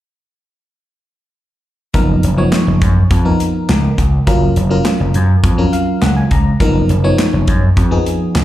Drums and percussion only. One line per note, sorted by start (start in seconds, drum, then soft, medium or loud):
1.94 kick medium
1.94 closed hi-hat medium
2.23 closed hi-hat medium
2.52 snare loud
2.52 clap medium
2.52 closed hi-hat medium
2.82 kick loud
2.82 closed hi-hat medium
3.11 kick loud
3.11 closed hi-hat loud
3.40 closed hi-hat medium
3.69 snare loud
3.69 clap medium
3.69 closed hi-hat medium
3.98 kick medium
3.98 closed hi-hat medium
4.27 kick loud
4.27 closed hi-hat medium
4.56 closed hi-hat medium
4.85 snare loud
4.85 clap loud
4.85 closed hi-hat medium
5.14 closed hi-hat medium
5.44 kick loud
5.44 closed hi-hat loud
5.73 closed hi-hat medium
6.02 snare medium
6.02 clap medium
6.02 closed hi-hat medium
6.31 kick medium
6.31 closed hi-hat medium
6.60 kick loud
6.60 closed hi-hat medium
6.89 closed hi-hat medium
7.19 snare loud
7.19 clap medium
7.19 closed hi-hat medium
7.48 kick medium
7.48 closed hi-hat medium
7.77 kick loud
7.77 closed hi-hat medium
8.06 closed hi-hat medium
8.35 snare loud
8.35 clap medium
8.35 closed hi-hat medium